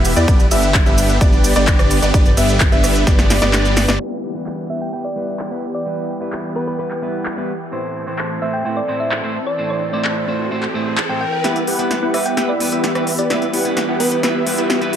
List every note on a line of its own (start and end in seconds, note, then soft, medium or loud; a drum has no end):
0.00 0.14 E1 loud
0.00 0.24 E3 medium
0.00 0.14 B3 loud
0.00 3.96 B3 medium
0.00 0.14 E4 medium
0.00 0.14 G4 medium
0.00 3.96 G4 medium
0.00 0.14 B4 medium
0.00 0.14 E5 loud
0.05 open hi-hat medium
0.05 ride medium
0.05 shaker medium
0.16 0.26 E2 loud
0.16 0.25 B3 medium
0.16 0.25 E4 medium
0.16 0.25 G4 medium
0.16 0.25 B4 medium
0.16 0.25 D5 medium
0.16 0.25 D5 loud
0.16 closed hi-hat medium
0.16 shaker soft
0.28 0.49 G1 medium
0.28 3.96 D3 medium
0.28 0.44 B3 medium
0.28 0.44 D4 medium
0.28 0.44 G4 medium
0.28 0.44 B4 medium
0.28 0.44 D5 loud
0.28 kick loud
0.28 closed hi-hat medium
0.28 shaker soft
0.40 closed hi-hat soft
0.40 shaker soft
0.51 0.84 G1 loud
0.51 0.77 B3 medium
0.51 0.77 D4 medium
0.51 0.77 G4 medium
0.51 0.77 B4 medium
0.51 0.77 E5 loud
0.51 open hi-hat loud
0.51 ride medium
0.51 shaker medium
0.63 closed hi-hat medium
0.63 shaker soft
0.74 kick loud
0.74 clap loud
0.74 closed hi-hat medium
0.74 shaker soft
0.86 1.19 G1 medium
0.86 1.18 B3 medium
0.86 1.18 D4 medium
0.86 1.18 G4 medium
0.86 1.18 B4 medium
0.86 1.18 E5 medium
0.86 shaker soft
0.98 open hi-hat medium
0.98 ride medium
0.98 shaker medium
1.09 closed hi-hat medium
1.09 shaker soft
1.21 1.54 G1 loud
1.21 1.53 B3 medium
1.21 1.53 D4 medium
1.21 1.53 G4 medium
1.21 1.53 B4 medium
1.21 1.53 D5 medium
1.21 kick loud
1.21 closed hi-hat medium
1.21 shaker soft
1.33 shaker soft
1.44 open hi-hat loud
1.44 ride medium
1.44 shaker medium
1.56 2.00 G1 loud
1.56 2.00 B3 loud
1.56 2.00 D4 medium
1.56 2.00 G4 medium
1.56 2.00 B4 medium
1.56 2.00 D5 loud
1.56 closed hi-hat medium
1.56 shaker soft
1.67 kick loud
1.67 clap loud
1.67 closed hi-hat medium
1.67 shaker soft
1.79 cross-stick medium
1.79 closed hi-hat soft
1.79 shaker soft
1.91 open hi-hat medium
1.91 ride medium
1.91 shaker medium
2.02 2.12 G1 loud
2.02 2.11 B3 medium
2.02 2.11 D4 medium
2.02 2.11 G4 medium
2.02 2.11 B4 medium
2.02 2.11 D5 loud
2.02 closed hi-hat medium
2.02 shaker soft
2.14 2.35 G1 medium
2.14 2.30 B3 medium
2.14 2.30 G4 medium
2.14 2.30 B4 medium
2.14 2.30 D5 loud
2.14 kick loud
2.14 closed hi-hat medium
2.14 shaker soft
2.26 closed hi-hat soft
2.26 shaker soft
2.37 2.70 G1 loud
2.37 2.63 B3 medium
2.37 2.63 D4 medium
2.37 2.63 G4 medium
2.37 2.63 B4 medium
2.37 2.63 E5 loud
2.37 open hi-hat loud
2.37 ride medium
2.37 shaker medium
2.49 closed hi-hat medium
2.49 shaker soft
2.60 kick loud
2.60 clap loud
2.60 closed hi-hat medium
2.60 shaker soft
2.72 3.05 G1 medium
2.72 3.04 B3 medium
2.72 3.04 D4 medium
2.72 3.04 G4 medium
2.72 3.04 B4 medium
2.72 3.04 E5 medium
2.72 3.04 E5 loud
2.72 closed hi-hat soft
2.72 shaker soft
2.84 cross-stick medium
2.84 open hi-hat loud
2.84 ride medium
2.84 shaker medium
2.95 closed hi-hat medium
2.95 shaker soft
3.07 3.40 G1 loud
3.07 3.39 B3 medium
3.07 3.39 G4 medium
3.07 3.39 B4 medium
3.07 3.39 D5 medium
3.07 kick loud
3.07 snare medium
3.07 closed hi-hat medium
3.07 shaker soft
3.19 snare medium
3.19 closed hi-hat soft
3.19 shaker soft
3.30 snare medium
3.30 open hi-hat loud
3.30 ride medium
3.30 shaker medium
3.42 3.86 G1 medium
3.42 3.86 B3 loud
3.42 3.86 D4 medium
3.42 3.86 G4 medium
3.42 3.86 B4 medium
3.42 3.86 D5 loud
3.42 snare medium
3.42 closed hi-hat medium
3.42 shaker soft
3.53 snare medium
3.53 clap loud
3.53 closed hi-hat medium
3.53 shaker soft
3.65 closed hi-hat soft
3.65 shaker soft
3.77 snare loud
3.77 open hi-hat medium
3.77 ride medium
3.77 shaker medium
3.88 3.98 G1 loud
3.88 3.97 B3 medium
3.88 3.97 D4 medium
3.88 3.97 G4 medium
3.88 3.97 B4 medium
3.88 3.97 D5 loud
3.88 snare medium
3.88 closed hi-hat medium
3.88 shaker soft
3.99 11.40 E3 medium
3.99 4.32 G3 medium
3.99 4.32 B3 medium
3.99 7.68 B3 medium
3.99 4.32 E4 medium
3.99 7.68 G4 medium
3.99 4.32 B4 medium
3.99 crash medium
4.35 4.67 G3 medium
4.35 4.67 B3 medium
4.35 4.67 E4 medium
4.35 4.67 B4 medium
4.46 clap loud
4.69 4.90 G3 medium
4.69 4.90 B3 medium
4.69 4.90 E4 medium
4.69 4.91 B4 medium
4.69 4.79 E5 medium
4.82 4.89 G5 medium
4.93 5.07 G3 medium
4.93 5.07 B3 medium
4.93 5.07 E4 medium
4.93 5.07 B4 medium
4.93 5.01 G5 medium
5.05 5.17 D5 medium
5.16 5.48 G3 medium
5.16 5.48 B3 medium
5.16 5.49 E4 medium
5.16 5.49 B4 loud
5.39 clap loud
5.51 5.65 G3 medium
5.51 5.65 B3 medium
5.51 5.65 E4 medium
5.51 5.65 B4 medium
5.74 5.87 D5 medium
5.86 6.18 G3 medium
5.86 6.18 B3 medium
5.86 6.18 E4 medium
5.86 6.18 B4 medium
6.20 6.53 G3 medium
6.20 6.53 B3 medium
6.20 6.53 E4 medium
6.20 6.53 B4 medium
6.32 clap loud
6.55 6.76 G3 medium
6.55 6.76 B3 medium
6.55 6.76 E4 medium
6.55 6.65 B4 medium
6.55 6.77 B4 medium
6.67 6.75 B4 medium
6.79 6.93 G3 medium
6.79 6.93 B3 medium
6.79 6.93 E4 medium
6.79 6.87 B4 medium
6.79 6.93 B4 medium
6.91 clap soft
7.02 7.34 G3 medium
7.02 7.34 B3 medium
7.02 7.35 E4 medium
7.02 7.35 B4 medium
7.25 clap loud
7.37 7.51 G3 medium
7.37 7.51 B3 medium
7.37 7.51 E4 medium
7.37 7.51 B4 medium
7.72 8.04 A2 medium
7.72 8.04 A3 medium
7.72 8.04 C4 medium
7.72 11.41 C4 medium
7.72 8.04 E4 medium
7.72 11.41 A4 medium
7.72 8.05 C5 medium
7.72 riser medium
8.06 8.39 A2 medium
8.06 8.39 A3 medium
8.06 8.39 C4 medium
8.06 8.39 E4 medium
8.06 8.39 C5 medium
8.19 clap loud
8.41 8.62 A2 medium
8.41 8.62 A3 medium
8.41 8.62 C4 medium
8.41 8.63 E4 medium
8.41 8.63 C5 medium
8.41 8.51 E5 medium
8.53 8.61 G5 medium
8.64 8.79 A2 medium
8.64 8.79 A3 medium
8.64 8.79 C4 medium
8.64 8.79 E4 medium
8.64 8.79 C5 medium
8.64 8.73 G5 medium
8.77 8.89 D5 medium
8.88 9.20 A2 loud
8.88 9.20 A3 medium
8.88 9.21 C4 medium
8.88 9.21 E4 medium
8.88 9.21 C5 loud
9.00 9.12 E5 medium
9.12 clap loud
9.23 9.37 A2 medium
9.23 9.37 A3 medium
9.23 9.37 C4 medium
9.23 9.37 E4 medium
9.23 9.37 C5 medium
9.47 9.59 D5 medium
9.57 9.90 A2 medium
9.57 9.90 A3 medium
9.57 9.90 C4 medium
9.57 9.90 E4 medium
9.57 9.91 C5 medium
9.70 9.91 D5 medium
9.92 10.25 A2 medium
9.92 10.25 A3 medium
9.92 10.25 C4 medium
9.92 10.25 E4 medium
9.92 10.25 C5 medium
9.92 10.28 D5 medium
10.05 clap loud
10.27 10.48 A2 medium
10.27 10.48 A3 medium
10.27 10.48 C4 medium
10.27 10.49 E4 medium
10.27 10.49 C5 medium
10.51 10.65 A2 medium
10.51 10.65 A3 medium
10.51 10.65 C4 medium
10.51 10.65 E4 medium
10.51 10.65 C5 medium
10.63 clap soft
10.74 10.96 A2 medium
10.74 10.96 A3 medium
10.74 10.97 C4 medium
10.74 10.97 E4 medium
10.74 10.97 C5 loud
10.98 clap loud
11.09 11.23 A2 medium
11.09 11.23 A3 medium
11.09 11.23 C4 medium
11.09 11.23 E4 medium
11.09 11.23 C5 medium
11.09 11.19 G5 medium
11.21 11.28 G5 medium
11.33 11.40 G5 medium
11.44 14.96 E3 medium
11.44 11.76 G3 medium
11.44 11.76 B3 medium
11.44 11.60 B3 medium
11.44 14.96 B3 medium
11.44 11.60 E4 medium
11.44 11.76 E4 medium
11.44 11.60 G4 medium
11.44 14.96 G4 medium
11.44 11.60 B4 medium
11.44 11.77 B4 medium
11.44 11.60 E5 medium
11.44 snare soft
11.44 closed hi-hat medium
11.44 riser medium
11.56 closed hi-hat soft
11.67 11.93 B3 medium
11.67 11.93 E4 medium
11.67 11.93 G4 medium
11.67 11.93 B4 medium
11.67 11.93 F#5 medium
11.67 open hi-hat loud
11.79 12.11 G3 medium
11.79 12.11 B3 medium
11.79 12.11 E4 medium
11.79 12.12 B4 medium
11.79 closed hi-hat soft
11.91 snare soft
11.91 closed hi-hat medium
12.02 12.34 B3 medium
12.02 12.34 E4 medium
12.02 12.34 G4 medium
12.02 12.34 B4 medium
12.02 12.34 F#5 medium
12.13 12.34 G3 medium
12.13 12.34 B3 medium
12.13 12.35 E4 medium
12.13 12.35 B4 medium
12.13 12.23 E5 medium
12.13 cross-stick medium
12.13 open hi-hat medium
12.26 12.33 G5 medium
12.26 closed hi-hat soft
12.37 12.51 G3 medium
12.37 12.51 B3 medium
12.37 12.69 B3 medium
12.37 12.69 E4 medium
12.37 12.51 E4 medium
12.37 12.69 G4 medium
12.37 12.69 B4 medium
12.37 12.51 B4 medium
12.37 12.69 E5 medium
12.37 12.45 G5 medium
12.37 snare soft
12.37 closed hi-hat medium
12.49 12.61 D5 medium
12.60 12.92 G3 medium
12.60 12.93 B3 medium
12.60 12.93 E4 medium
12.60 12.93 B4 medium
12.60 open hi-hat loud
12.72 13.16 B3 medium
12.72 13.16 E4 medium
12.72 13.16 G4 medium
12.72 13.16 B4 medium
12.72 13.16 E5 loud
12.72 closed hi-hat soft
12.84 snare medium
12.84 closed hi-hat medium
12.95 13.09 G3 medium
12.95 13.09 B3 medium
12.95 13.09 E4 medium
12.95 13.10 B4 medium
12.95 cross-stick medium
12.95 closed hi-hat soft
13.07 open hi-hat medium
13.19 13.28 B3 medium
13.19 13.28 E4 medium
13.19 13.28 G4 medium
13.19 13.27 B4 medium
13.19 13.28 D5 medium
13.19 13.31 D5 medium
13.19 closed hi-hat soft
13.30 13.62 G3 medium
13.30 13.62 B3 medium
13.30 13.46 B3 medium
13.30 13.46 E4 medium
13.30 13.62 E4 medium
13.30 13.46 G4 medium
13.30 13.46 B4 medium
13.30 13.63 B4 medium
13.30 13.46 E5 loud
13.30 snare medium
13.30 closed hi-hat medium
13.42 closed hi-hat soft
13.54 13.79 B3 medium
13.54 13.79 E4 medium
13.54 13.79 G4 medium
13.54 13.79 B4 medium
13.54 13.79 F#5 loud
13.54 open hi-hat loud
13.65 13.97 G3 medium
13.65 13.97 B3 medium
13.65 13.97 E4 medium
13.65 13.98 B4 medium
13.65 closed hi-hat medium
13.77 snare medium
13.77 closed hi-hat medium
13.88 14.21 B3 medium
13.88 14.21 E4 medium
13.88 14.21 G4 medium
13.88 14.21 B4 medium
13.88 14.21 F#5 loud
14.00 14.20 G3 medium
14.00 14.20 B3 medium
14.00 14.21 E4 medium
14.00 14.09 B4 medium
14.00 14.21 B4 loud
14.00 open hi-hat loud
14.12 14.19 B4 medium
14.12 closed hi-hat soft
14.23 14.37 G3 medium
14.23 14.37 B3 medium
14.23 14.55 B3 medium
14.23 14.55 E4 medium
14.23 14.37 E4 medium
14.23 14.55 G4 medium
14.23 14.31 B4 medium
14.23 14.55 B4 medium
14.23 14.37 B4 medium
14.23 14.55 E5 medium
14.23 snare medium
14.23 closed hi-hat medium
14.46 14.78 G3 medium
14.46 14.79 B3 medium
14.46 14.79 E4 medium
14.46 14.79 B4 loud
14.46 open hi-hat loud
14.58 14.96 B3 medium
14.58 14.96 E4 medium
14.58 14.96 G4 medium
14.58 14.96 B4 medium
14.58 14.96 E5 loud
14.58 closed hi-hat medium
14.70 snare medium
14.70 closed hi-hat medium
14.81 14.95 G3 medium
14.81 14.95 B3 medium
14.81 14.95 E4 medium
14.81 14.96 B4 loud
14.81 closed hi-hat soft
14.93 open hi-hat medium